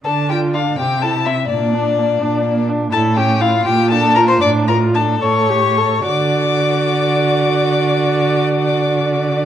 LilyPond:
<<
  \new Staff \with { instrumentName = "Violin" } { \time 6/8 \key bes \lydian \tempo 4. = 78 a''8 g''8 f''8 g''8 a''8 e''8 | d''2~ d''8 r8 | a''8 g''8 f''8 g''8 a''8 bes''16 c'''16 | d'''8 bes''8 a''8 cis'''4. |
d'''2.~ | d'''2. | }
  \new Staff \with { instrumentName = "Violin" } { \time 6/8 \key bes \lydian a'8 g'8 f'8 g'8 a'8 e'8 | d'2~ d'8 r8 | a'8 g'8 f'8 g'8 a'8 bes'16 c''16 | d''8 bes'8 a'8 cis''4. |
d''2.~ | d''2. | }
  \new Staff \with { instrumentName = "Viola" } { \time 6/8 \key bes \lydian d'8 f'8 d'8 c'8 e'8 c'8 | bes8 d'8 bes8 d'8 bes8 d'8 | e'8 cis'8 e'8 f'8 d'8 f'8 | d'8 f'8 d'8 a'8 g'8 a'8 |
fis'2.~ | fis'2. | }
  \new Staff \with { instrumentName = "Cello" } { \clef bass \time 6/8 \key bes \lydian d4. c4. | bes,4. bes,4. | a,4. bes,4. | a,4. a,4. |
d2.~ | d2. | }
>>